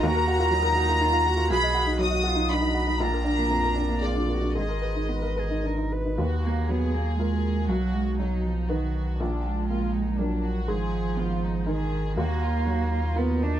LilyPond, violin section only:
\new Staff \with { instrumentName = "Violin section" } { \time 3/4 \key ees \minor \tempo 4 = 120 bes''2. | b''4 dis'''4 b''4 | bes''2 d''4 | ees''2 r4 |
ges'4 aes'2 | fis'4 dis'4 fis'4 | d'4 f'8 ees'8 d'8 ges'8 | aes'4 f'8 ees'8 aes'4 |
ges'8 f'8 ges'8 f'8 ees'4 | }